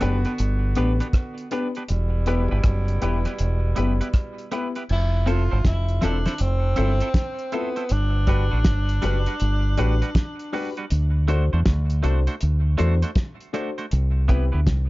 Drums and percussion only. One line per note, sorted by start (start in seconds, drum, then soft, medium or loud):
0.01 cross-stick medium
0.01 closed hi-hat medium
0.25 closed hi-hat soft
0.38 closed hi-hat medium
0.75 closed hi-hat medium
1.00 closed hi-hat medium
1.13 kick loud
1.13 cross-stick loud
1.13 closed hi-hat medium
1.38 closed hi-hat soft
1.51 closed hi-hat medium
1.75 closed hi-hat soft
1.89 closed hi-hat medium
2.26 closed hi-hat medium
2.64 kick loud
2.64 cross-stick loud
2.64 closed hi-hat medium
2.88 closed hi-hat soft
3.02 closed hi-hat medium
3.25 cross-stick medium
3.25 closed hi-hat medium
3.39 closed hi-hat medium
3.76 closed hi-hat medium
4.01 closed hi-hat medium
4.14 kick loud
4.14 cross-stick loud
4.14 closed hi-hat medium
4.38 closed hi-hat soft
4.52 closed hi-hat medium
4.75 closed hi-hat soft
4.89 crash medium
5.27 closed hi-hat medium
5.65 kick loud
5.65 snare loud
5.65 closed hi-hat medium
5.88 closed hi-hat medium
6.02 snare medium
6.02 closed hi-hat medium
6.26 snare medium
6.26 closed hi-hat soft
6.38 closed hi-hat medium
6.76 closed hi-hat medium
7.00 closed hi-hat medium
7.14 kick loud
7.14 snare loud
7.14 closed hi-hat medium
7.39 closed hi-hat soft
7.52 closed hi-hat medium
7.76 closed hi-hat soft
7.89 closed hi-hat medium
8.27 kick medium
8.27 closed hi-hat medium
8.64 kick loud
8.64 snare loud
8.64 closed hi-hat medium
8.89 closed hi-hat medium
9.02 closed hi-hat medium
9.26 closed hi-hat medium
9.40 closed hi-hat medium
9.77 closed hi-hat medium
10.02 closed hi-hat medium
10.15 kick loud
10.15 snare loud
10.15 closed hi-hat medium
10.39 closed hi-hat soft
10.53 open hi-hat soft
10.77 closed hi-hat soft
10.90 closed hi-hat loud
11.28 closed hi-hat medium
11.66 kick loud
11.66 snare loud
11.66 closed hi-hat medium
11.90 closed hi-hat medium
12.04 closed hi-hat medium
12.27 closed hi-hat medium
12.41 closed hi-hat medium
12.79 closed hi-hat medium
13.02 closed hi-hat medium
13.15 kick loud
13.15 snare loud
13.15 closed hi-hat medium
13.41 closed hi-hat soft
13.54 closed hi-hat medium
13.78 closed hi-hat soft
13.91 closed hi-hat medium
14.29 kick medium
14.29 closed hi-hat medium
14.67 kick loud
14.67 snare loud
14.67 closed hi-hat loud